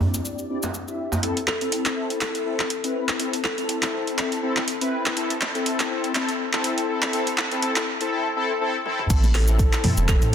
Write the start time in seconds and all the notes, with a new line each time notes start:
0.00 C4 D4 E4 G4 D5, djembe tone, djembe bass
0.14 djembe tone, cabasa
0.25 cabasa
0.38 cabasa
0.49 C4 D4 E4 G4 D5
0.63 djembe slap, cabasa
0.74 cabasa
0.87 C4 D4 E4 G4 E5, cabasa
1.12 djembe slap, djembe tone, cabasa
1.23 C4 E4 A4, closed hi-hat
1.37 closed hi-hat
1.48 A4, clap
1.61 C4 E4 A4, closed hi-hat
1.72 closed hi-hat
1.86 clap, closed hi-hat
1.97 C4 E4 A4
2.10 closed hi-hat
2.21 A4, clap, closed hi-hat
2.35 closed hi-hat
2.46 C4 E4 A4
2.60 clap
2.70 closed hi-hat
2.84 C4 E4 B4, closed hi-hat
3.09 clap, closed hi-hat
3.20 C4 E4 A4, closed hi-hat
3.33 closed hi-hat
3.44 A4, clap
3.58 C4 E4 A4, closed hi-hat
3.69 closed hi-hat
3.83 clap, closed hi-hat
3.93 C4 E4 A4
4.07 closed hi-hat
4.18 clap, closed hi-hat
4.32 closed hi-hat
4.43 C4 E4 A4
4.57 clap
4.68 closed hi-hat
4.81 C4 E4 B4, closed hi-hat
5.06 clap, closed hi-hat
5.16 C4 E4 A4, closed hi-hat
5.30 closed hi-hat
5.41 clap
5.55 C4 E4 A4, closed hi-hat
5.66 closed hi-hat
5.80 clap, closed hi-hat
5.90 C4 E4 A4
6.04 closed hi-hat
6.15 C4 E4 A4, clap, closed hi-hat
6.29 closed hi-hat
6.53 C4 E4 A4, clap
6.64 closed hi-hat
6.78 closed hi-hat
6.89 C4 E4 A4
7.02 clap, closed hi-hat
7.13 C4 E4 A4, closed hi-hat
7.27 closed hi-hat
7.38 clap
7.51 C4 E4 A4, closed hi-hat
7.62 C4 E4 A4, closed hi-hat
7.76 clap, closed hi-hat
8.01 C4 E4 A4, closed hi-hat
8.12 C4 E4 A4
8.36 C4 E4 A4
8.61 C4 E4 A4
8.86 C4 E4 A4, high tom
8.99 mid tom
9.10 A1 C4 E4 A4, kick, closed hi-hat, crash, cabasa
9.23 closed hi-hat, high conga, cabasa
9.35 A4, clap, open hi-hat
9.48 C4 E4 A4, closed hi-hat, cabasa
9.59 kick, closed hi-hat, cabasa
9.73 clap, closed hi-hat, cabasa
9.84 C4 E4 A4, open hi-hat, mid tom, low conga, djembe bass
9.97 E1, closed hi-hat, high conga, cabasa
10.08 A4, kick, clap, closed hi-hat, djembe tone, low conga, cabasa
10.22 A2, closed hi-hat, cabasa